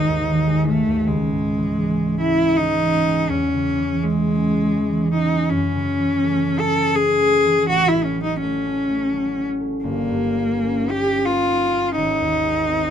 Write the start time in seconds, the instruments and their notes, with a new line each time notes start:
Already playing: harp G#1 D#3 G#3 D#4 G#4 C5, cello D#4
0.08 harp D#2
0.27 harp D#3
0.47 harp G#3
0.67 harp D#3, cello A3
0.87 harp D#2
1.07 harp C#2, cello G#3
1.32 harp G#2
1.57 harp E3
1.83 harp G#3
2.07 harp C#4
2.20 cello E4
2.33 harp G#3
2.56 harp E3, cello D#4
2.80 harp C#4
3.05 harp G#3
3.29 harp E2, cello C#4
3.54 harp C#3
3.78 harp E3
4.03 harp G#3, cello G#3
4.28 harp C#4
4.52 harp G#3
4.76 harp E3
5.01 harp C#4
5.13 cello D#4
5.25 harp G#3
5.50 harp F#2, cello C#4
5.74 harp C#3
5.99 harp E3
6.23 harp A3
6.48 harp C#4
6.59 cello A4
6.71 harp E4
6.95 harp C#4, cello G#4
7.19 harp A3
7.46 harp E3
7.69 harp A1, cello F#4
7.88 cello E4
7.94 harp A2
8.04 cello C#4
8.18 harp F#3
8.23 cello D#4
8.41 harp A3, cello C#4
8.65 harp C#4
8.89 harp A3
9.13 harp F#3
9.37 harp C#4
9.60 harp A3
9.84 harp G1, cello A#3
10.09 harp G2
10.32 harp A#3
10.55 harp C#4
10.79 harp D#4
10.90 cello G4
11.03 harp C#4
11.26 harp A#3, cello F4
11.51 harp D#4
11.74 harp C#4
11.96 harp G#1, cello D#4
12.21 harp D#2
12.43 harp G#3
12.67 harp C4